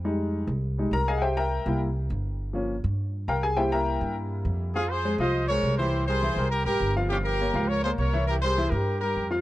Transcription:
<<
  \new Staff \with { instrumentName = "Horn section" } { \time 4/4 \key f \minor \tempo 4 = 204 r1 | r1 | r1 | r1 |
<f' aes'>8 <aes' c''>4 <c'' ees''>4 <bes' des''>4 <g' c''>8~ | <g' c''>8 <aes' c''>4. <g' bes'>8 <g' bes'>4 r8 | <des' g'>8 <g' bes'>4. <bes' des''>8 <aes' c''>8 <bes' des''>4 | <g' bes'>8 <aes' c''>4 <g' bes'>4 <g' bes'>4 r8 | }
  \new Staff \with { instrumentName = "Upright piano" } { \time 4/4 \key f \minor r2. <bes' bes''>8 <aes' ees'' f'' aes''>8 | <g' c'' e'' ges'' g''>8 <bes' e'' g'' bes''>4. r2 | r2. <bes' f'' g'' bes''>8 <aes' aes''>8 | <g' c'' e'' g''>8 <bes' e'' g'' bes''>4. r2 |
<f f' f''>4 <aes aes' c''>8 <f f' f''>4 <aes aes' c''>4 <e e' e''>8~ | <e e' e''>8 <g g' bes'>8 <e e' e''>8 <g g' bes'>4 <g g' bes'>4 <f f' f''>8 | <f f' f''>4 <bes bes' des''>8 <f f' f''>4 <bes bes' des''>4 <e e' e''>8~ | <e e' e''>8 <g g' bes'>8 <e e' e''>8 <g g' bes'>4 <g g' bes'>4 <f f' f''>8 | }
  \new Staff \with { instrumentName = "Upright piano" } { \time 4/4 \key f \minor <g aes ees'>4. r4 <g aes ees'>8 r4 | r4. <g bes e'>8 r2 | r8 <f bes des'>8 r2. | <g bes e'>1 |
r1 | r1 | r1 | r1 | }
  \new Staff \with { instrumentName = "Upright bass" } { \clef bass \time 4/4 \key f \minor f,4. c,4. c,4~ | c,4. c,4. g,,4~ | g,,4. g,4. c,4~ | c,4. g,4. f,4~ |
f,4. c,4. c,4~ | c,4. c,4 aes,,8 g,,4~ | g,,4. des,4. c,4~ | c,4. g,4. f,4 | }
>>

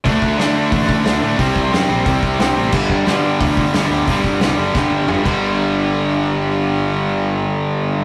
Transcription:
<<
  \new Staff \with { instrumentName = "Distorted electric guitar" } { \clef bass \time 4/4 \key d \phrygian \tempo 4 = 179 <d a d'>4 <d a d'>8 <d a d'>8 <d a d'>4 <d a d'>8 <d a d'>8 | <c g c'>4 <c g c'>8 <c g c'>8 <c g c'>4 <c g c'>8 <c g c'>8 | <g, d g>4 <g, d g>8 <g, d g>8 <g, d g>4 <g, d g>8 <g, d g>8 | <g, d g>4 <g, d g>8 <g, d g>8 <g, d g>4 <g, d g>8 <g, d g>8~ |
<g, d g>1~ | <g, d g>1 | }
  \new Staff \with { instrumentName = "Distorted electric guitar" } { \clef bass \time 4/4 \key d \phrygian <d a d'>4 <d a d'>8 <d a d'>8 <d a d'>4 <d a d'>8 <d a d'>8 | <c g c'>4 <c g c'>8 <c g c'>8 <c g c'>4 <c g c'>8 <c g c'>8 | <g, d g>4 <g, d g>8 <g, d g>8 <g, d g>4 <g, d g>8 <g, d g>8 | <g, d g>4 <g, d g>8 <g, d g>8 <g, d g>4 <g, d g>8 <g, d g>8~ |
<g, d g>1~ | <g, d g>1 | }
  \new Staff \with { instrumentName = "Overdriven electric guitar" } { \clef bass \time 4/4 \key d \phrygian <d a d'>1 | <c g c'>1 | <g, d g>1 | <g, d g>2.~ <g, d g>8 <g, d g>8~ |
<g, d g>1~ | <g, d g>1 | }
  \new Staff \with { instrumentName = "Picked electric bass" } { \clef bass \time 4/4 \key d \phrygian d,8 d,8 d4 a,,4 d,8 a,8 | c,8 c,8 fis,8 bes,,8 c,8 c,8 c,8 a,,8 | g,,8 g,,8 g,4 d,4 g,,8 d,8 | g,,8 g,,8 c,8 fis,,8 g,,8 g,,8 g,,8 g,,8~ |
g,,1~ | g,,1 | }
  \new DrumStaff \with { instrumentName = "Drums" } \drummode { \time 4/4 <hho bd>8 bd8 <hho sn>4 <hho bd>8 bd8 <hho sn>4 | <hho bd>8 bd8 <hho sn>4 <hho bd>8 bd8 <hho sn>4 | <cymc bd>8 bd8 <hho sn>4 <hho bd>8 bd8 <hho sn>4 | <hho bd>8 bd8 <hho sn>4 <bd sn>4 toml8 <cymc bd>8 |
r4 r4 r4 r4 | r4 r4 r4 r4 | }
>>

